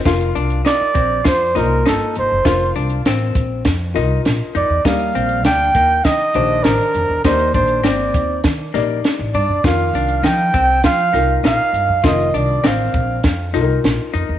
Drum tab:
HH |xxxxx-x-x-x-x-x-|x-xxx-x-x-x-x-x-|xxxxx-x-x-x-x-x-|xxxxx-x-x-x-x-x-|
SD |o---o---o-o-o---|o---o---o-o-o---|o---o---o---o---|o---o---o-o-o---|
BD |o-----o-o-------|o-----o-o-------|o-----o-o-------|o-o---o-o-------|

HH |x-xxx-x-x-x-x-x-|x-x-x-x-x-x-x-x-|
SD |o---o---o-o-o---|o---o---o-o-o---|
BD |o-----o-o-------|o-----o-o-------|